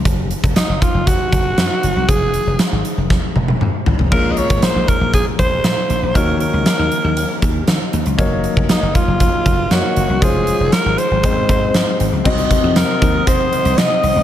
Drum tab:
CC |----------------|----------------|x---------------|----------------|
HH |x-xxx-x-x-x-x-x-|x-x-x-x---------|--xxx-x-x-x-x-x-|x-x-x-x-x-x-x-xx|
SD |----o-------o---|----o---o-------|----o-------o---|----o-------o---|
T1 |----------------|----------oo----|----------------|----------------|
T2 |----------------|------------o---|----------------|----------------|
FT |----------------|--------------oo|----------------|----------------|
BD |o--o--o-o-o-----|o-------o-------|o--o--o-o-o-----|o---------o-----|

CC |----------------|----------------|x---------------|
HH |x-x-x-x-x-x-x-x-|x-x-x-x-x-x-x-x-|-xx-x-x-x-xxx-o-|
SD |----o-------o---|----o-------o---|----o-------o---|
T1 |----------------|----------------|----------------|
T2 |----------------|----------------|----------------|
FT |----------------|----------------|----------------|
BD |o--o--o-o-o-----|o-------o-o-----|o-o---o-o-------|